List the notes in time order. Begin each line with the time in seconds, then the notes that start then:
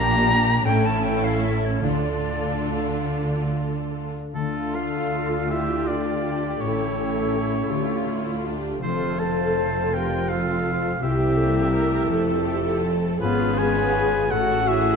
Already playing: A#1 A#2 A#3 D4 G4 A#5
0.27 D4 G4
0.65 A1 A2 C#4 E4 A4 G5
0.86 A5
1.03 C#4 G5
1.24 F5
1.43 E4 A4 E5
1.65 C#5
1.84 D2 D3 D4 F4 A4 D5
2.26 D4
2.66 F4
3.06 A4
3.47 D5
3.91 A4
4.33 D2 D3 A3 D4 F4 A4
4.74 A3 F4 A4 F5
5.12 A4
5.50 A3 D4 E4 F4 G4 E5
5.86 D4 F4 D5 F5
6.24 A4
6.61 A1 A2 A3 C#4 E4 A4 C#5
6.98 A3 C#4
7.34 E4 G4 A4
7.70 D2 D3 A3 F4 G4
8.06 A3 E4 F4
8.44 D4 F4 G4 A4
8.82 F1 F2 F3 A3 C4 F4 A4 C5
9.19 F4 A4 C5 A5
9.58 A4
9.94 C4 F4 G4 A#4 F5 G5
10.29 F4 A4 F5 A5
10.67 A4
11.01 C2 C3 C4 E4 G4 E5
11.37 A#3 A4
11.73 A3 G4 A#4 C5
12.09 F1 F2 A3 C4 A4
12.44 A3 G4
12.83 A4 C5
13.20 G#1 G#2 B3 C#4 F4 G#4 B4
13.58 B3 G#4 B4 G#5
13.96 F4 C#5
14.31 A1 A2 A3 C#4 F#4 A4 F#5
14.68 C#4 E4 G#4 E5